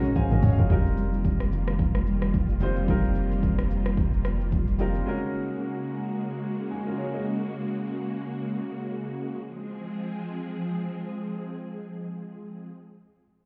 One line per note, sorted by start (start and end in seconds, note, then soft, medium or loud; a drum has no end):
0.00 0.66 C#3 medium
0.00 0.66 G#3 medium
0.00 0.72 G#3 medium
0.00 0.68 C#4 medium
0.00 0.72 C#4 medium
0.00 0.71 D#4 medium
0.00 0.66 F#4 medium
0.00 0.72 F#4 medium
0.00 0.16 A#4 medium
0.00 0.44 C#5 loud
0.04 shaker soft
0.16 0.31 C5 medium
0.16 0.31 F5 medium
0.16 0.50 G#5 medium
0.16 kick medium
0.16 mid tom medium
0.16 shaker medium
0.31 0.41 G#1 medium
0.31 0.43 A#4 medium
0.31 0.43 D#5 medium
0.31 mid tom medium
0.31 shaker medium
0.42 0.56 G#1 medium
0.42 0.58 G#4 medium
0.42 0.58 C#5 medium
0.42 floor tom loud
0.42 open hi-hat medium
0.42 high conga medium
0.42 low conga medium
0.42 shaker medium
0.53 0.69 F5 medium
0.58 0.69 F#1 medium
0.58 0.70 F4 medium
0.58 0.71 A#4 medium
0.58 floor tom loud
0.58 shaker medium
0.69 5.02 F1 medium
0.69 5.02 D#3 medium
0.69 1.58 G3 medium
0.69 5.02 G3 medium
0.69 5.02 A#3 medium
0.69 1.58 C4 medium
0.69 1.59 D#4 medium
0.69 5.02 F4 medium
0.69 1.59 F4 medium
0.69 1.59 A#4 medium
0.69 kick loud
0.69 low conga medium
0.69 shaker medium
0.86 shaker soft
0.97 high conga medium
0.97 shaker loud
1.14 shaker medium
1.25 kick medium
1.25 shaker medium
1.40 cross-stick medium
1.40 high conga medium
1.40 shaker soft
1.52 low conga medium
1.52 shaker medium
1.67 cross-stick medium
1.67 high conga soft
1.67 shaker soft
1.79 kick loud
1.79 shaker medium
1.95 cross-stick medium
1.95 high conga medium
1.95 shaker medium
2.07 shaker medium
2.22 cross-stick medium
2.22 shaker soft
2.34 kick medium
2.34 shaker medium
2.49 shaker medium
2.60 2.83 G3 medium
2.60 2.84 C4 medium
2.60 2.84 D#4 medium
2.60 2.84 F4 medium
2.60 2.85 C5 medium
2.60 high conga medium
2.60 low conga medium
2.60 shaker medium
2.76 shaker soft
2.88 3.76 G3 medium
2.88 3.76 C4 medium
2.88 3.77 D#4 medium
2.88 3.77 F4 medium
2.88 3.77 A#4 medium
2.88 kick loud
2.88 shaker medium
3.04 shaker soft
3.15 shaker loud
3.32 shaker medium
3.43 kick medium
3.43 shaker medium
3.59 cross-stick medium
3.59 shaker soft
3.71 shaker medium
3.86 cross-stick medium
3.86 shaker soft
3.97 kick loud
3.97 shaker medium
4.13 shaker medium
4.25 cross-stick medium
4.25 shaker medium
4.41 shaker soft
4.52 kick medium
4.52 shaker medium
4.67 shaker medium
4.78 5.01 G3 medium
4.78 5.02 C4 medium
4.78 5.02 D#4 medium
4.78 5.03 F4 medium
4.78 5.03 A#4 medium
4.78 shaker medium
4.95 shaker soft
5.06 9.39 C#3 medium
5.06 5.94 G#3 medium
5.06 9.39 G#3 medium
5.06 9.39 A#3 medium
5.06 5.95 C#4 medium
5.06 5.95 D#4 medium
5.06 9.39 F#4 medium
5.06 5.95 F#4 medium
5.06 5.96 A#4 medium
6.71 6.86 D#4 medium
6.71 6.85 G#4 medium
6.87 6.97 F4 medium
6.87 6.97 A#4 medium
6.98 7.13 G#4 medium
6.98 7.13 C#5 medium
7.14 7.40 A#4 medium
7.14 7.39 D#5 medium
9.43 12.69 F3 medium
9.43 12.69 G#3 medium
9.43 12.69 C4 medium
9.43 12.69 G#4 medium